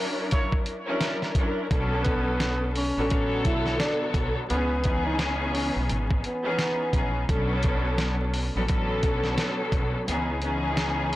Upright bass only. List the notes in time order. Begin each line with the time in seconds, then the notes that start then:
1.71 B1
2.97 A1
3.45 B1
4.14 B1
4.50 C#2
5.76 B1
5.89 G#1
6.93 A#1
7.29 B1
8.55 A1
9.03 B1
9.72 B1
10.08 C#2